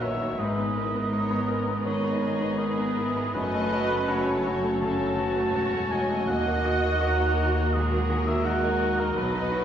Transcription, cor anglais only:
0.01 0.41 E5 medium
0.39 1.85 D#5 medium
1.85 2.60 C#5 medium
2.58 3.33 D#5 medium
3.34 4.51 B4 loud
4.81 5.93 A5 medium
5.91 6.27 G#5 loud
6.27 7.75 F#5 loud
7.73 8.29 D#5 medium
8.27 8.47 E5 medium
8.46 9.01 F#5 medium
9.00 9.16 A#4 medium
9.17 9.64 B4 loud

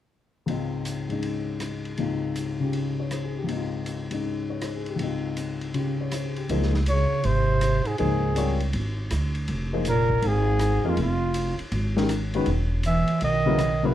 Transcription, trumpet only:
6.89 7.27 C#5 medium
7.26 7.88 C5 medium
7.87 7.99 G#4 medium
7.99 8.57 G#4 medium
9.89 10.29 A#4 medium
10.27 10.90 G#4 loud
10.89 11.00 F4 medium
11.02 11.58 F4 medium
12.87 13.21 E5 medium
13.24 13.88 D#5 medium
13.87 13.94 B4 medium

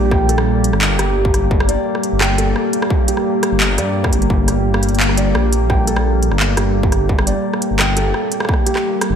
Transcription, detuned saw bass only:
0.00 0.72 A#1 medium
0.73 0.98 G1 loud
0.99 1.15 G1 loud
1.16 1.76 G1 medium
2.12 2.55 G1 loud
3.52 3.79 G1 loud
3.78 4.14 G2 medium
4.13 4.29 G1 loud
4.30 4.90 G1 loud
4.91 5.34 G1 medium
5.35 6.30 A#1 medium
6.31 6.56 G1 loud
6.57 6.73 G1 loud
6.74 7.34 G1 medium
7.71 8.13 G1 loud
9.10 9.16 G1 loud

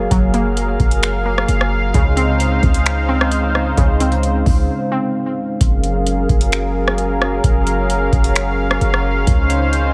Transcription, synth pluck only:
0.00 0.33 A#3 medium
0.11 1.48 F#3 loud
0.34 1.24 A#3 medium
1.26 1.94 A#3 medium
1.95 3.32 C#3 loud
2.17 3.07 C4 medium
3.09 3.99 C4 medium
3.78 5.15 C#3 loud
4.01 4.91 C4 medium
4.92 5.61 C4 medium

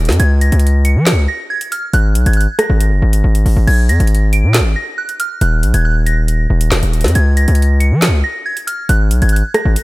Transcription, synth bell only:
0.00 0.15 A#6 medium
0.20 0.39 G#6 loud
0.41 0.82 A#6 medium
0.85 1.26 C#7 medium
1.28 1.48 A#6 medium
1.50 1.70 G#6 loud
1.72 1.92 F6 medium
1.94 2.24 F#6 loud
2.26 2.36 G#6 medium
2.37 2.57 F#6 medium
2.59 3.63 A#6 medium
3.67 3.87 G#6 loud
3.89 4.30 A#6 medium
4.33 4.74 D7 medium
4.76 4.96 A#6 medium
4.98 5.18 F#6 medium
5.20 5.39 F6 medium
5.42 5.72 F#6 loud
5.74 5.84 G#6 medium
5.85 6.05 F#6 medium
6.06 7.11 A#6 medium
7.15 7.35 G#6 loud
7.37 7.78 A#6 medium
7.80 8.21 C#7 medium
8.24 8.44 A#6 medium
8.46 8.65 G#6 medium
8.67 8.87 F6 medium
8.89 9.20 F#6 loud
9.22 9.32 G#6 medium
9.33 9.52 F#6 medium
9.54 9.83 A#6 medium

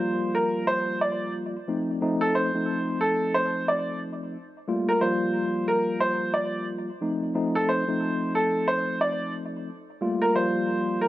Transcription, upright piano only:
0.00 0.31 C5 medium
0.35 0.65 A#4 medium
0.67 0.98 C5 medium
1.01 1.31 D5 medium
2.21 2.33 A4 medium
2.35 2.98 C5 medium
3.01 3.31 A4 medium
3.34 3.65 C5 medium
3.68 3.98 D5 medium
4.89 5.00 A#4 medium
5.01 5.64 C5 medium
5.68 5.98 A#4 medium
6.00 6.31 C5 medium
6.34 6.64 D5 medium
7.55 7.67 A4 medium
7.69 8.31 C5 medium
8.35 8.65 A4 medium
8.68 8.98 C5 medium
9.01 9.31 D5 medium
10.22 10.34 A#4 medium
10.36 10.98 C5 medium
11.01 11.08 A#4 medium

